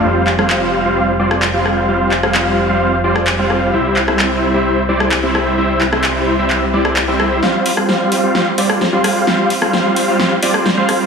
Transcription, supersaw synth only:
\new Staff \with { instrumentName = "Supersaw synth" } { \time 4/4 \key c \mixolydian \tempo 4 = 130 <g c' f' c'' f''>8 r16 <g c' f' c'' f''>4 <g c' f' c'' f''>8 r16 <g c' f' c'' d''>8 r16 <g c' f' c'' f''>8. | <g c' f' c'' f''>8 r16 <g c' f' c'' f''>4 <g c' f' c'' f''>8 r16 <g c' f' c'' d''>8 r16 <g c' f' c'' f''>8. | <g c' e' c'' e''>8 r16 <g c' e' c'' e''>4 <g c' e' c'' e''>8 r16 <g c' e' c'' d''>8 r16 <g c' e' c'' e''>8. | <g c' e' c'' e''>8 r16 <g c' e' c'' e''>4 <g c' e' c'' e''>8 r16 <g c' e' c'' d''>8 r16 <g c' e' c'' e''>8. |
<g c' f' c'' f''>8 r16 <g c' f' c'' f''>4 <g c' f' c'' f''>8 r16 <g c' f' c'' d''>8 r16 <g c' f' c'' f''>8. | <g c' f' c'' f''>8 r16 <g c' f' c'' f''>4 <g c' f' c'' f''>8 r16 <g c' f' c'' d''>8 r16 <g c' f' c'' f''>8. | }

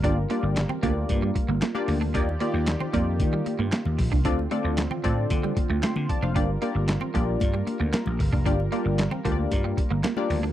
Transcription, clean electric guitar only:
\new Staff \with { instrumentName = "Clean electric guitar" } { \time 4/4 \key g \minor \tempo 4 = 114 d'16 r16 bes16 r8 c'16 bes16 r8 g16 r16 bes16 bes16 r8 d'16 | d'16 r16 bes16 r8 c'16 bes16 r8 g16 r16 bes16 bes16 r8 d'16 | d'16 r16 a16 r8 c'16 a16 r8 g16 r16 a16 a16 r8 d'16 | d'16 r16 bes16 r8 c'16 bes16 r8 g16 r16 bes16 bes16 r8 d'16 |
d'16 r16 bes16 r8 c'16 bes16 r8 g16 r16 bes16 bes16 r8 d'16 | }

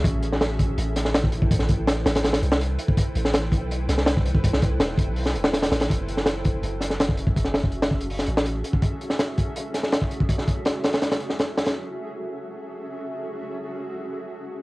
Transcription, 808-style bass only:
\new Staff \with { instrumentName = "808-style bass" } { \clef bass \time 4/4 \key fis \minor \tempo 4 = 164 a,,2 a,,2 | a,,4. a,,4 c,4 r8 | r8 a,,4~ a,,16 b,,8. c,4.~ | c,4 e,,8. b,,8. e,,4 a,,8 |
fis,,2 fis,,2 | fis,,4. fis,,4 a,,4 r8 | r1 | r1 |
r1 | r1 | }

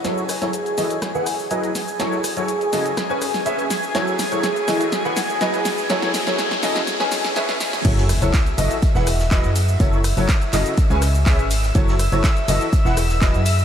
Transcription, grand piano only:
\new Staff \with { instrumentName = "Grand piano" } { \time 4/4 \key fis \dorian \tempo 4 = 123 <fis e' fis' a' cis''>16 r8 <fis e' fis' a' cis''>16 r8 <e e' fis' a' dis''>16 r8 <e e' gis' b' fis''>16 r8 <fis e' gis' b' dis''>16 r8. | <fis e' fis' a' cis''>16 r8 <fis e' fis' a' cis''>16 r8 <cis e' fis' a' dis''>16 r8 <cis' gis' b' cis'' gis''>16 r8 <cis' gis' b' cis'' e''>16 r8. | <fis e' fis' a' cis''>16 r8 <fis e' fis' a' cis''>16 r8 <e e' fis' a' dis''>16 r8 <e e' gis' b' fis''>16 r8 <fis e' gis' b' dis''>16 r8. | <fis e' fis' a' cis''>16 r8 <fis e' fis' a' cis''>16 r8 <cis e' fis' a' dis''>16 r8 <cis' gis' b' cis'' gis''>16 r8 <cis' gis' b' cis'' e''>16 r8. |
<fis e' fis' a' cis''>16 r8 <fis e' fis' a' cis''>16 r8 <e e' fis' a' dis''>16 r8 <e e' gis' b' fis''>16 r8 <fis e' gis' b' dis''>16 r8. | <fis e' fis' a' cis''>16 r8 <fis e' fis' a' cis''>16 r8 <cis e' fis' a' dis''>16 r8 <cis' gis' b' cis'' gis''>16 r8 <cis' gis' b' cis'' e''>16 r8. | <fis e' fis' a' cis''>16 r8 <fis e' fis' a' cis''>16 r8 <e e' fis' a' dis''>16 r8 <e e' gis' b' fis''>16 r8 <fis e' gis' b' dis''>16 r8. | }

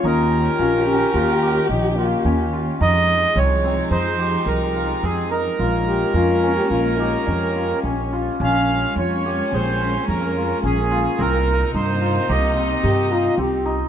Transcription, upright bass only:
\new Staff \with { instrumentName = "Upright bass" } { \clef bass \time 5/4 \key bes \dorian \tempo 4 = 108 ees,4 bes,,4 ees,4 bes,,4 ees,4 | f,4 c,4 f,4 c,4 f,4 | bes,,4 f,4 bes,,4 f,4 bes,,4 | bes,,4 f,4 bes,,4 f,4 bes,,4 |
c,4 g,4 c,4 g,4 c,4 | }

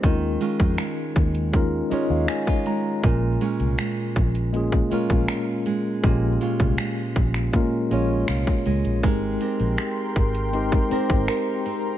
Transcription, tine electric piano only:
\new Staff \with { instrumentName = "Tine electric piano" } { \time 4/4 \key bes \dorian \tempo 4 = 80 << { r2 r8 ees''16 f''16 aes''8 bes''8 | r1 | r1 | r1 | } \\ { <aes des' ees' f' bes'>4. r8 <aes des' ees' f' bes'>8 <aes des' ees' f' des''>4 r8 | <aes bes des' f' bes'>4. r8 <aes bes des' f' aes'>8 <aes bes des' f' bes'>4 r8 | <aes bes des' f' g'>4. r8 <aes bes des' f' bes'>8 <aes bes des' f' des''>4 r8 | <aes c' ees' g' bes'>4. r8 <aes c' ees' g' bes'>8 <aes c' ees' g' c''>4 r8 | } >> }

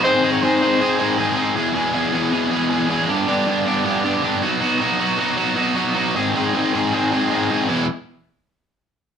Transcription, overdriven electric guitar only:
\new Staff \with { instrumentName = "Overdriven electric guitar" } { \time 4/4 \key e \major \tempo 4 = 156 <gis, dis gis bis dis' gis'>8 <gis bis dis' gis'>8 <gis, dis gis bis dis' gis'>8 <gis bis dis' gis'>8 <gis bis dis' gis'>8 <gis, dis gis bis dis' gis'>8 <gis bis dis' gis'>8 <gis bis dis' gis'>8 | <e, b, e gis b gis'>8 <e, b, e gis b gis'>8 <e, b, e gis b gis'>8 <e, b, e gis b gis'>8 <e, b, e gis b gis'>8 <e, b, e gis b gis'>8 <e, b, e gis b gis'>8 <e, b, e gis b gis'>8 | <g, d g b d' g'>8 <g, d g b d' g'>8 <g, d g b d' g'>8 <g, d g b d' g'>8 <g, d g b d' g'>8 <g, d g b d' g'>8 <g, d g b d' g'>8 <fis b dis' fis'>8 | <fis b dis' fis'>8 <fis b dis' fis'>8 <fis b dis' fis'>8 <fis b dis' fis'>8 <fis b dis' fis'>8 <fis b dis' fis'>8 <fis b dis' fis'>8 <fis b dis' fis'>8 |
<gis, dis gis bis dis' gis'>8 <gis, dis gis bis dis' gis'>8 <gis, dis gis bis dis' gis'>8 <gis, dis gis bis dis' gis'>8 <gis, dis gis bis dis' gis'>8 <gis, dis gis bis dis' gis'>8 <gis, dis gis bis dis' gis'>8 <gis, dis gis bis dis' gis'>8 | <e, b, e gis b e'>8 r2. r8 | }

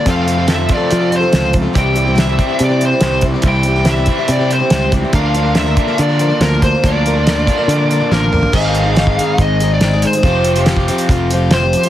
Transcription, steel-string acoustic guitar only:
\new Staff \with { instrumentName = "Steel-string acoustic guitar" } { \time 4/4 \key c \mixolydian \tempo 4 = 142 <f c' f' a'>8 <f c' f' a'>16 <c' f' a'>16 <f c' f' a'>16 <c' f' a'>8 <c' f' a'>8 <c' f' a'>16 <f c' f' a'>16 <c' f' a'>16 <f c' f' a'>8 <f c' f' a'>16 <c' f' a'>16 | <c g c' e' g'>8 <g c' e' g'>16 <c' e' g'>16 <c g c' e' g'>16 <c' e' g'>8 <c' e' g'>8 <c' e' g'>16 <g c' e' g'>16 <c' e' g'>16 <c g c' e' g'>8 <g c' e' g'>16 <c' e' g'>16 | <c g c' e' g'>8 <g c' e' g'>16 <c' e' g'>16 <c g c' e' g'>16 <c' e' g'>8 <c' e' g'>8 <c' e' g'>16 <g c' e' g'>16 <c' e' g'>16 <c g c' e' g'>8 <g c' e' g'>16 <c' e' g'>16 | <d f bes d' bes'>8 <f bes d' bes'>16 <bes d' bes'>16 <d f bes d' bes'>16 <bes d' bes'>8 <bes d' bes'>8 <bes d' bes'>16 <f bes d' bes'>16 <bes d' bes'>16 <d f bes d' bes'>8 <f bes d' bes'>16 <bes d' bes'>16 |
<d f bes d' bes'>8 <f bes d' bes'>16 <bes d' bes'>16 <d f bes d' bes'>16 <bes d' bes'>8 <bes d' bes'>8 <bes d' bes'>16 <f bes d' bes'>16 <bes d' bes'>16 <d f bes d' bes'>8 <f bes d' bes'>8 | <aes, ees aes c' ees' aes'>8. <aes c' ees' aes'>16 <aes, ees aes c' ees' aes'>8 <aes c' ees' aes'>8 <aes c' ees' aes'>8 <aes c' ees' aes'>8 <aes, ees aes c' ees' aes'>16 <aes c' ees' aes'>16 <aes c' ees' aes'>16 <aes c' ees' aes'>16 | <f c' f' g'>8. <c' f' g'>16 <f c' f' g'>16 <c' f' g'>16 <f c' f' g'>8 <f c' f' g'>8 <f c' f' g'>8 <f c' f' g'>16 <c' f' g'>16 <f c' f' g'>16 g'16 | }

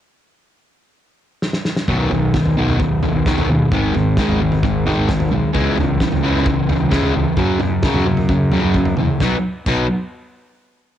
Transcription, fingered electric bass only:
\new Staff \with { instrumentName = "Fingered electric bass" } { \clef bass \time 4/4 \key b \major \tempo 4 = 131 r1 | b,,8 b,,8 r16 b,,4. b,,8. dis,16 r16 | gis,,8 gis,,8 r16 gis,,4. gis,,8. b,,16 r16 | cis,8 cis,8 r16 cis,4. cis,8. cis,16 r16 |
fis,8 fis,8 r16 fis,4. fis,8. e,16 r16 | b,,16 r8. b,,8 r2 r8 | }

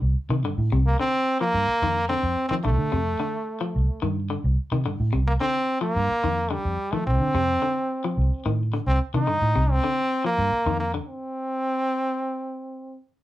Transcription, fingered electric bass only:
\new Staff \with { instrumentName = "Fingered electric bass" } { \clef bass \time 4/4 \key c \dorian \tempo 4 = 108 c,16 r16 c16 g,16 a,16 c,8 r4 g,16 r16 f,8. | f,16 r16 f16 c,16 d16 f,8 r4 c,16 r16 g,8. | c,16 r16 c16 g,16 a,16 c,8 r4 g,16 r16 f,8. | f,16 r16 f16 c,16 d16 f,8 r4 c,16 r16 a,8. |
c,16 r16 c16 g,16 a,16 c,8 r4 g,16 r16 f,8. | r1 | }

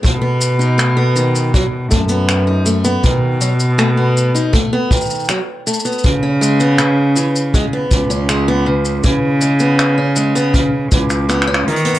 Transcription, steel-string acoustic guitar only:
\new Staff \with { instrumentName = "Steel-string acoustic guitar" } { \time 4/4 \key b \mixolydian \tempo 4 = 80 a16 b8 dis'16 a16 b16 dis8 fis16 r16 a16 b8 dis'16 a16 b16 | dis8 fis16 r16 a16 b8 dis'16 a16 b16 dis8 fis16 r16 a16 b16 | r16 cis'16 gis16 b16 cis8 e16 r16 gis16 b8 cis'16 gis16 b16 cis8 | e16 r16 gis16 b8 cis'16 gis16 b16 cis16 r16 e16 r16 b16 cis'16 r16 b16 | }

